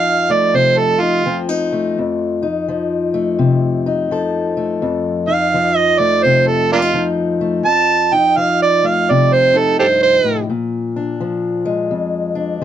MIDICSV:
0, 0, Header, 1, 3, 480
1, 0, Start_track
1, 0, Tempo, 710059
1, 1337, Time_signature, 4, 2, 24, 8
1, 8546, End_track
2, 0, Start_track
2, 0, Title_t, "Harmonica"
2, 0, Program_c, 0, 22
2, 0, Note_on_c, 0, 77, 104
2, 214, Note_on_c, 0, 74, 83
2, 224, Note_off_c, 0, 77, 0
2, 379, Note_on_c, 0, 72, 80
2, 389, Note_off_c, 0, 74, 0
2, 529, Note_on_c, 0, 69, 85
2, 539, Note_off_c, 0, 72, 0
2, 684, Note_on_c, 0, 65, 80
2, 694, Note_off_c, 0, 69, 0
2, 943, Note_off_c, 0, 65, 0
2, 3571, Note_on_c, 0, 77, 90
2, 3902, Note_off_c, 0, 77, 0
2, 3902, Note_on_c, 0, 75, 90
2, 4050, Note_on_c, 0, 74, 88
2, 4060, Note_off_c, 0, 75, 0
2, 4214, Note_on_c, 0, 72, 78
2, 4224, Note_off_c, 0, 74, 0
2, 4377, Note_on_c, 0, 69, 80
2, 4387, Note_off_c, 0, 72, 0
2, 4533, Note_off_c, 0, 69, 0
2, 4545, Note_on_c, 0, 58, 68
2, 4545, Note_on_c, 0, 62, 68
2, 4545, Note_on_c, 0, 65, 97
2, 4588, Note_off_c, 0, 58, 0
2, 4597, Note_off_c, 0, 62, 0
2, 4794, Note_off_c, 0, 65, 0
2, 5173, Note_on_c, 0, 81, 108
2, 5501, Note_on_c, 0, 79, 84
2, 5511, Note_off_c, 0, 81, 0
2, 5660, Note_on_c, 0, 77, 87
2, 5670, Note_off_c, 0, 79, 0
2, 5813, Note_off_c, 0, 77, 0
2, 5829, Note_on_c, 0, 74, 92
2, 5993, Note_on_c, 0, 77, 87
2, 6004, Note_off_c, 0, 74, 0
2, 6158, Note_on_c, 0, 74, 81
2, 6169, Note_off_c, 0, 77, 0
2, 6309, Note_on_c, 0, 72, 101
2, 6319, Note_off_c, 0, 74, 0
2, 6474, Note_on_c, 0, 69, 88
2, 6484, Note_off_c, 0, 72, 0
2, 6616, Note_off_c, 0, 69, 0
2, 6620, Note_on_c, 0, 67, 59
2, 6620, Note_on_c, 0, 69, 59
2, 6620, Note_on_c, 0, 72, 85
2, 6663, Note_off_c, 0, 67, 0
2, 6670, Note_off_c, 0, 69, 0
2, 6772, Note_off_c, 0, 72, 0
2, 6780, Note_on_c, 0, 72, 92
2, 7029, Note_off_c, 0, 72, 0
2, 8546, End_track
3, 0, Start_track
3, 0, Title_t, "Steel-string acoustic guitar"
3, 0, Program_c, 1, 25
3, 0, Note_on_c, 1, 41, 66
3, 0, Note_on_c, 1, 53, 65
3, 0, Note_on_c, 1, 63, 56
3, 201, Note_on_c, 1, 57, 58
3, 363, Note_on_c, 1, 48, 63
3, 679, Note_off_c, 1, 63, 0
3, 681, Note_on_c, 1, 63, 58
3, 848, Note_off_c, 1, 63, 0
3, 850, Note_off_c, 1, 48, 0
3, 850, Note_on_c, 1, 60, 67
3, 852, Note_off_c, 1, 53, 0
3, 854, Note_on_c, 1, 53, 60
3, 1006, Note_off_c, 1, 60, 0
3, 1006, Note_on_c, 1, 63, 53
3, 1165, Note_off_c, 1, 57, 0
3, 1168, Note_on_c, 1, 57, 55
3, 1337, Note_off_c, 1, 63, 0
3, 1338, Note_off_c, 1, 41, 0
3, 1341, Note_on_c, 1, 41, 64
3, 1639, Note_on_c, 1, 63, 58
3, 1660, Note_off_c, 1, 53, 0
3, 1660, Note_off_c, 1, 57, 0
3, 1815, Note_on_c, 1, 53, 66
3, 2123, Note_on_c, 1, 57, 62
3, 2290, Note_on_c, 1, 48, 69
3, 2609, Note_off_c, 1, 63, 0
3, 2612, Note_on_c, 1, 63, 64
3, 2775, Note_off_c, 1, 48, 0
3, 2777, Note_off_c, 1, 53, 0
3, 2780, Note_on_c, 1, 53, 70
3, 2786, Note_on_c, 1, 69, 66
3, 3086, Note_off_c, 1, 57, 0
3, 3089, Note_on_c, 1, 57, 57
3, 3256, Note_off_c, 1, 41, 0
3, 3259, Note_on_c, 1, 41, 75
3, 3279, Note_off_c, 1, 63, 0
3, 3563, Note_on_c, 1, 63, 55
3, 3584, Note_off_c, 1, 53, 0
3, 3584, Note_off_c, 1, 57, 0
3, 3584, Note_off_c, 1, 69, 0
3, 3746, Note_on_c, 1, 53, 65
3, 4053, Note_on_c, 1, 57, 63
3, 4225, Note_on_c, 1, 48, 66
3, 4521, Note_off_c, 1, 63, 0
3, 4524, Note_on_c, 1, 60, 61
3, 4612, Note_off_c, 1, 60, 0
3, 4612, Note_on_c, 1, 63, 53
3, 4689, Note_off_c, 1, 53, 0
3, 4692, Note_on_c, 1, 53, 65
3, 4693, Note_off_c, 1, 63, 0
3, 4701, Note_off_c, 1, 48, 0
3, 4701, Note_on_c, 1, 63, 60
3, 5000, Note_off_c, 1, 57, 0
3, 5008, Note_on_c, 1, 57, 51
3, 5157, Note_off_c, 1, 63, 0
3, 5161, Note_off_c, 1, 57, 0
3, 5166, Note_off_c, 1, 41, 0
3, 5174, Note_on_c, 1, 41, 69
3, 5493, Note_on_c, 1, 63, 56
3, 5513, Note_off_c, 1, 53, 0
3, 5659, Note_on_c, 1, 53, 56
3, 5971, Note_on_c, 1, 57, 50
3, 6154, Note_on_c, 1, 48, 69
3, 6439, Note_off_c, 1, 63, 0
3, 6447, Note_on_c, 1, 63, 54
3, 6613, Note_off_c, 1, 41, 0
3, 6628, Note_on_c, 1, 43, 61
3, 6920, Note_off_c, 1, 43, 0
3, 6926, Note_on_c, 1, 45, 60
3, 7078, Note_off_c, 1, 63, 0
3, 7079, Note_off_c, 1, 57, 0
3, 7081, Note_off_c, 1, 48, 0
3, 7096, Note_on_c, 1, 46, 68
3, 7099, Note_off_c, 1, 45, 0
3, 7412, Note_on_c, 1, 62, 51
3, 7572, Note_off_c, 1, 53, 0
3, 7574, Note_on_c, 1, 53, 60
3, 7879, Note_on_c, 1, 56, 60
3, 8050, Note_on_c, 1, 41, 64
3, 8051, Note_off_c, 1, 46, 0
3, 8343, Note_off_c, 1, 62, 0
3, 8351, Note_on_c, 1, 62, 61
3, 8525, Note_off_c, 1, 53, 0
3, 8546, Note_off_c, 1, 41, 0
3, 8546, Note_off_c, 1, 56, 0
3, 8546, Note_off_c, 1, 62, 0
3, 8546, End_track
0, 0, End_of_file